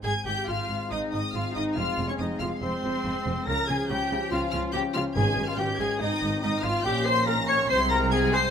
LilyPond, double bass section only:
\new Staff \with { instrumentName = "Double bass section" } { \clef bass \time 4/4 \key aes \major \tempo 4 = 141 aes,,8 aes,,8 aes,,8 aes,,8 aes,,8 aes,,8 aes,,8 aes,,8 | f,,8 f,,8 f,,8 f,,8 f,,8 f,,8 f,,8 f,,8 | des,8 des,8 des,8 des,8 des,8 des,8 des,8 des,8 | aes,,8 aes,,8 aes,,8 aes,,8 aes,,8 aes,,8 aes,,8 aes,,8 |
bes,,2 c,2 | }